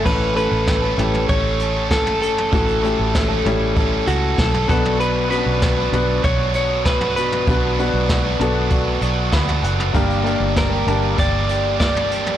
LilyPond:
<<
  \new Staff \with { instrumentName = "Clean electric guitar" } { \time 4/4 \key a \mixolydian \tempo 4 = 97 b'8 b'4. cis''4 a'8 a'8~ | a'2~ a'8 fis'8 a'8 a'8 | b'8 b'4. cis''8 cis''8 b'8 b'8~ | b'2.~ b'8 r8 |
r4 bes'4 d''4 d''4 | }
  \new Staff \with { instrumentName = "Grand piano" } { \time 4/4 \key a \mixolydian << { e''16 r2. r8. | r1 | r1 | r2. b''8 fis''8 |
r1 | } \\ { <a cis' e' a'>8 <a cis' e' a'>4 <a cis' e' g'>2 r8 | <a cis' e' fis'>8 <a cis' e' g'>4 <g a cis' e'>2 <b d' fis' b'>8~ | <b d' fis' b'>8 <b cis' d' fis' b'>4 <b d' fis' b'>2 r8 | <b d' fis' b'>8 <b d' fis' b'>4 <b d' fis' a'>2 r8 |
<bes d' g' bes'>8 <bes d' g' bes'>4 <bes d' g' a''>2 r8 | } >> }
  \new Staff \with { instrumentName = "Grand piano" } { \clef bass \time 4/4 \key a \mixolydian a,4. r2 r8 | a,4. r2 b,8~ | b,4 r2 r8 b,8~ | b,4 r2. |
g,4. r2 r8 | }
  \new Staff \with { instrumentName = "Overdriven electric guitar" } { \time 4/4 \key a \mixolydian <e a cis' a'>8 <a, e a cis' a'>8. <a cis' a'>8. <e a cis' a'>8 <e a cis' a'>8. <a cis' a'>8. | <e a cis' a'>8 <a, e a cis' a'>8. <a cis' a'>8. <e a cis' a'>8 <e a cis' a'>8. <a cis' a'>16 <b, fis b d' fis'>8~ | <b, fis b d' fis'>8 <b, fis b d' fis'>8. <b d' fis'>8. <fis b d' fis'>8 <fis b d' fis'>8. <b d' fis'>8. | <fis b d' fis'>8 <b, fis b d' fis'>8. <b d' fis'>8. <fis b d' fis'>8 <fis b d' fis'>8. <b d' fis'>8. |
<g bes d' g'>8 <g, d g bes d' g'>8. <g bes d' g'>8. <g bes d' g'>8 <g bes d' g'>8. <g bes d' g'>8. | }
  \new Staff \with { instrumentName = "Fingered electric bass" } { \clef bass \time 4/4 \key a \mixolydian a,,8. a,,8. a,,8 a,,2 | a,,8. a,,8. a,,4 cis,8 b,,8 b,,8~ | b,,8. b,,8. b,,8 b,,2 | b,,8. b,,8. b,,4 b,,8 d,8 fis,,8 |
g,,8. g,,8. g,,8 g,,2 | }
  \new DrumStaff \with { instrumentName = "Drums" } \drummode { \time 4/4 <cymc bd>8 hh8 <hh bd sn>8 <hh tomfh>16 tomfh16 <hh bd>8 hh8 <hh bd sn>16 tomfh16 hh16 tomfh16 | <hh bd>16 hh16 hh8 <hh bd sn>8 <hh tomfh>8 <hh bd>8 hh8 <hh bd sn>16 tomfh16 <hh bd>16 tomfh16 | hh8 hh8 <hh bd sn>8 <hh tomfh>8 <hh bd>8 hh8 <hh bd sn>16 tomfh16 hh16 tomfh16 | <hh bd>8 hh8 <hh bd sn>8 <hh tomfh>8 <hh bd>8 hh8 <hh bd sn>16 tomfh16 hh16 tomfh16 |
<hh bd>16 hh16 hh8 <hh bd sn>8 <hh tomfh>8 <hh bd>8 hh8 <hh bd sn>16 tomfh16 hh16 tomfh16 | }
>>